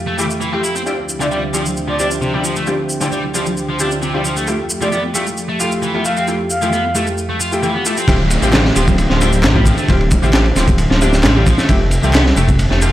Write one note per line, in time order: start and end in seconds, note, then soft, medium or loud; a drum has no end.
0.00 0.83 F2 medium
0.00 0.83 A3 medium
0.00 0.82 G4 medium
0.07 0.17 A3 medium
0.18 0.24 E3 medium
0.18 0.50 A3 medium
0.18 0.50 E4 medium
0.18 0.50 F4 medium
0.18 0.50 G4 loud
0.18 shaker medium
0.30 shaker soft
0.41 0.51 E3 medium
0.41 shaker soft
0.53 0.69 A3 medium
0.53 0.62 C4 medium
0.53 0.69 E4 medium
0.53 0.69 F4 medium
0.53 0.69 G4 medium
0.63 0.74 E4 medium
0.63 shaker medium
0.75 0.81 C4 medium
0.75 shaker soft
0.86 4.43 D2 medium
0.86 4.43 D3 medium
0.86 4.43 F3 medium
0.86 4.43 C4 medium
0.86 0.97 C4 medium
0.86 0.97 D4 medium
0.86 0.97 E4 medium
0.86 0.97 F4 medium
0.86 0.97 G4 medium
0.86 8.04 G4 medium
0.86 4.43 E5 medium
0.86 shaker soft
1.09 shaker medium
1.20 1.26 D3 medium
1.20 1.37 C4 medium
1.20 1.37 D4 medium
1.20 1.37 E4 medium
1.20 1.37 F4 medium
1.20 1.37 G4 loud
1.20 1.27 D5 medium
1.20 shaker soft
1.31 1.41 G3 medium
1.31 1.39 D5 medium
1.31 shaker soft
1.54 1.64 F3 medium
1.54 1.65 C4 medium
1.54 1.65 D4 medium
1.54 1.65 E4 medium
1.54 1.65 F4 medium
1.54 1.65 G4 medium
1.54 shaker medium
1.66 shaker soft
1.77 shaker soft
1.88 1.97 F3 medium
1.88 1.95 D5 medium
1.99 2.31 C4 medium
1.99 2.09 D4 medium
1.99 2.31 D4 medium
1.99 2.31 E4 medium
1.99 2.31 F4 medium
1.99 2.31 G4 medium
1.99 2.07 D5 medium
1.99 shaker medium
2.11 shaker soft
2.22 2.33 C3 medium
2.22 shaker soft
2.33 2.43 G3 medium
2.33 2.50 C4 medium
2.33 2.50 D4 medium
2.33 2.50 E4 medium
2.33 2.50 F4 medium
2.33 2.50 G4 medium
2.44 2.54 F3 medium
2.44 shaker medium
2.56 2.65 A3 medium
2.56 shaker soft
2.67 2.78 C4 medium
2.67 2.78 D4 medium
2.67 2.78 E4 medium
2.67 2.78 F4 medium
2.67 2.78 G4 medium
2.67 shaker soft
2.89 shaker medium
3.01 3.07 D3 medium
3.01 3.17 C4 medium
3.01 3.17 D4 medium
3.01 3.17 E4 medium
3.01 3.17 F4 medium
3.01 3.17 G4 loud
3.01 shaker soft
3.12 3.22 G3 medium
3.12 shaker soft
3.35 3.45 F3 medium
3.35 3.45 C4 medium
3.35 3.45 D4 medium
3.35 3.45 E4 medium
3.35 3.45 F4 medium
3.35 3.45 G4 medium
3.35 shaker medium
3.46 shaker soft
3.57 shaker soft
3.69 3.78 F3 medium
3.80 4.11 C4 medium
3.80 3.90 D4 medium
3.80 4.11 D4 medium
3.80 4.11 E4 medium
3.80 4.11 F4 medium
3.80 4.11 G4 loud
3.80 shaker medium
3.91 shaker soft
4.02 4.13 C3 medium
4.02 shaker soft
4.14 4.24 G3 medium
4.14 4.30 C4 medium
4.14 4.30 D4 medium
4.14 4.30 E4 medium
4.14 4.30 F4 medium
4.14 4.30 G4 medium
4.25 4.35 F3 medium
4.25 shaker medium
4.36 4.46 A3 medium
4.36 shaker soft
4.47 8.05 F2 medium
4.47 4.58 A3 medium
4.47 8.05 A3 medium
4.47 4.58 E4 medium
4.47 4.58 F4 medium
4.47 4.58 G4 medium
4.47 shaker soft
4.70 shaker medium
4.81 4.87 F3 medium
4.81 4.98 A3 medium
4.81 4.98 E4 medium
4.81 4.98 F4 medium
4.81 4.98 G4 loud
4.81 4.88 D5 medium
4.81 shaker soft
4.92 5.02 B3 medium
4.92 5.00 D5 medium
4.92 shaker soft
5.15 5.25 A3 medium
5.15 5.26 A3 medium
5.15 5.26 E4 medium
5.15 5.26 F4 medium
5.15 5.26 G4 medium
5.15 shaker medium
5.27 shaker soft
5.37 shaker soft
5.49 5.58 A3 loud
5.60 5.91 A3 medium
5.60 5.91 E4 medium
5.60 5.91 F4 medium
5.60 5.70 F4 medium
5.60 5.91 G4 loud
5.60 shaker medium
5.72 shaker soft
5.83 5.94 E3 medium
5.83 shaker soft
5.94 6.11 A3 medium
5.94 6.04 B3 medium
5.94 6.11 E4 medium
5.94 6.11 F4 medium
5.94 6.11 G4 medium
6.05 6.15 A3 medium
6.05 6.12 F5 medium
6.05 shaker medium
6.17 6.26 C4 medium
6.17 6.24 F5 medium
6.17 shaker soft
6.27 6.39 A3 medium
6.27 6.39 E4 medium
6.27 6.38 F4 medium
6.27 6.39 G4 loud
6.27 shaker soft
6.50 6.95 F5 medium
6.50 shaker medium
6.62 6.67 F3 medium
6.62 6.78 A3 medium
6.62 6.78 E4 medium
6.62 6.78 F4 medium
6.62 6.78 G4 medium
6.62 shaker soft
6.73 6.83 B3 medium
6.73 shaker soft
6.95 7.06 A3 medium
6.95 7.05 A3 loud
6.95 7.06 E4 medium
6.95 7.06 F4 medium
6.95 7.06 G4 medium
6.95 shaker medium
7.07 shaker soft
7.18 shaker soft
7.30 7.39 A3 medium
7.40 7.51 F4 medium
7.40 shaker medium
7.52 7.61 A3 medium
7.52 7.61 E4 medium
7.52 7.61 F4 medium
7.52 7.61 G4 medium
7.52 shaker soft
7.63 7.74 E3 medium
7.63 7.80 A3 medium
7.63 7.80 E4 medium
7.63 7.80 F4 medium
7.63 7.80 G4 medium
7.63 shaker soft
7.75 7.84 B3 medium
7.85 7.96 A3 medium
7.85 8.02 A3 medium
7.85 8.02 E4 medium
7.85 8.02 F4 medium
7.85 8.02 G4 medium
7.85 shaker medium
7.97 8.07 C4 medium
7.97 shaker soft
8.08 8.38 D1 loud
8.08 11.65 D3 medium
8.08 11.65 F3 medium
8.08 11.65 C4 medium
8.08 8.19 C4 medium
8.08 8.19 E4 medium
8.08 8.19 F4 medium
8.08 9.87 G4 medium
8.08 8.19 G4 loud
8.08 12.92 E5 medium
8.08 kick loud
8.08 ride medium
8.08 downlifter medium
8.08 shaker soft
8.30 ride medium
8.30 shaker medium
8.42 8.72 A1 medium
8.42 8.48 D3 medium
8.42 8.59 C4 medium
8.42 8.59 E4 medium
8.42 8.59 F4 medium
8.42 8.59 G4 loud
8.42 shaker soft
8.53 8.63 G3 medium
8.53 snare loud
8.53 clap loud
8.53 ride medium
8.53 shaker soft
8.65 snare medium
8.76 9.06 D1 medium
8.76 8.86 F3 loud
8.76 8.87 C4 medium
8.76 8.87 E4 medium
8.76 8.87 F4 medium
8.76 8.87 G4 medium
8.76 ride medium
8.76 shaker medium
8.88 kick medium
8.88 shaker soft
8.98 ride medium
8.98 shaker soft
9.10 9.45 D1 medium
9.10 9.19 F3 medium
9.10 snare soft
9.21 9.52 C4 medium
9.21 9.31 D4 medium
9.21 9.52 E4 medium
9.21 9.52 F4 medium
9.21 9.52 G4 loud
9.21 ride medium
9.21 shaker medium
9.33 shaker soft
9.43 9.73 A1 loud
9.43 9.54 C3 medium
9.43 snare loud
9.43 clap loud
9.43 ride medium
9.43 shaker soft
9.55 9.65 G3 medium
9.55 9.72 C4 medium
9.55 9.72 E4 medium
9.55 9.72 F4 medium
9.55 9.72 G4 medium
9.55 kick medium
9.66 9.76 F3 loud
9.66 kick loud
9.66 ride medium
9.66 shaker medium
9.77 9.87 A3 medium
9.77 ride soft
9.77 shaker soft
9.88 10.18 D1 loud
9.88 9.99 C4 medium
9.88 9.99 E4 medium
9.88 9.99 F4 medium
9.88 9.99 G4 loud
9.88 12.92 A4 medium
9.88 kick loud
9.88 ride medium
9.88 shaker soft
10.01 ride soft
10.11 kick medium
10.11 ride medium
10.11 shaker medium
10.23 10.52 A1 loud
10.23 10.28 D3 medium
10.23 10.39 C4 medium
10.23 10.39 E4 medium
10.23 10.39 F4 medium
10.23 10.39 G4 loud
10.23 shaker soft
10.33 10.44 G3 medium
10.33 snare loud
10.33 clap loud
10.33 ride loud
10.33 shaker soft
10.46 ride soft
10.56 10.86 D1 medium
10.56 10.66 F3 loud
10.56 10.67 C4 medium
10.56 10.67 E4 medium
10.56 10.67 F4 medium
10.56 10.67 G4 medium
10.56 snare soft
10.56 ride medium
10.56 shaker medium
10.68 kick loud
10.68 shaker soft
10.78 ride medium
10.78 shaker soft
10.90 11.26 D1 medium
10.90 11.00 F3 loud
10.90 snare soft
11.01 11.33 C4 medium
11.01 11.11 D4 medium
11.01 11.33 E4 medium
11.01 11.33 F4 medium
11.01 11.33 G4 loud
11.01 ride medium
11.01 shaker medium
11.13 snare soft
11.13 shaker soft
11.23 11.54 A1 loud
11.23 11.35 C3 loud
11.23 snare loud
11.23 clap loud
11.23 ride medium
11.23 shaker soft
11.36 11.45 G3 medium
11.36 11.52 C4 medium
11.36 11.52 E4 medium
11.36 11.52 F4 medium
11.36 11.52 G4 medium
11.46 11.57 F3 loud
11.46 kick medium
11.46 ride medium
11.46 shaker medium
11.58 11.67 A3 medium
11.58 snare soft
11.58 shaker soft
11.69 11.99 F1 loud
11.69 11.80 A3 medium
11.69 11.80 E4 medium
11.69 11.80 G4 loud
11.69 12.92 G4 medium
11.69 kick loud
11.69 ride medium
11.69 shaker soft
11.91 ride medium
11.91 shaker medium
12.03 12.33 C2 medium
12.03 12.09 F3 medium
12.03 12.20 A3 medium
12.03 12.20 E4 medium
12.03 12.20 G4 loud
12.03 shaker soft
12.14 12.24 B3 medium
12.14 snare loud
12.14 clap loud
12.14 ride medium
12.14 shaker soft
12.26 snare medium
12.37 12.67 F1 medium
12.37 12.47 A3 loud
12.37 12.48 A3 medium
12.37 12.48 E4 medium
12.37 12.47 G4 medium
12.37 ride medium
12.37 shaker medium
12.48 kick loud
12.48 shaker soft
12.59 ride medium
12.59 shaker soft
12.71 12.92 F1 medium
12.71 12.80 A3 loud
12.71 snare soft
12.82 12.92 A3 medium
12.82 12.92 E4 medium
12.82 12.92 F4 medium
12.82 12.92 G4 loud
12.82 ride medium
12.82 shaker medium